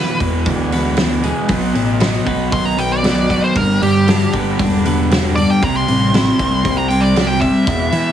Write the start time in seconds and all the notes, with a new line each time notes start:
Already playing: E2 B2 E3 E4 B4
0.20 E2 B2 E3 B3, kick, open hi-hat
0.46 D2 E2 B2 E3, kick, open hi-hat
0.72 E2 B2 E3 B3, open hi-hat
0.97 E2 B2 E3, snare, open hi-hat
1.23 E2 B2 E3 G#3, open hi-hat
1.48 B1 B2 F#3 B3, kick, open hi-hat
1.74 A1 B2 F#3 B3, open hi-hat
2.00 B2 F#3 B3 D#4, snare, open hi-hat
2.26 B1 B2 F#3 B3, kick, open hi-hat
2.51 B1 B2 D#3 F#3 B3 C6, kick, open hi-hat
2.65 A#5
2.78 B2 F#3 B3 G5, open hi-hat
2.92 D5
3.04 B2 D#3 F#3 B3, snare, open hi-hat
3.30 B2 F#3 B3, kick, open hi-hat
3.44 C5
3.55 G1 G2 D3 G3 A#4, kick, open hi-hat
3.82 G2 D3 G3 G4, open hi-hat
4.07 G2 D3 G3 D4, snare, open hi-hat
4.33 G1 G2 D3 G3 B3, kick, open hi-hat
4.59 E1 G2 D3 G3, kick, open hi-hat
4.85 G2 D3 G3 B3, open hi-hat
5.10 G2 D3 G3, snare, open hi-hat
5.35 G2 D3 G3 D5, open hi-hat
5.50 G5
5.62 C2 C3 G3 C4 A#5, kick, open hi-hat
5.77 C6
5.87 A1 C3 G3 C4, open hi-hat
6.13 C3 G3 C4 E4, snare, open hi-hat
6.39 C2 C3 G3 C4, kick, open hi-hat
6.64 C2 C3 G3 C4, kick, open hi-hat
6.78 A#5
6.88 C3 G3 C4 G5, open hi-hat
7.01 D5
7.15 C3 G3 C4, snare, open hi-hat
7.27 G5
7.40 C3 G3 C4 E5, kick, open hi-hat
7.66 E2 B2 E3, kick, open hi-hat
7.92 E2 B2 E3, open hi-hat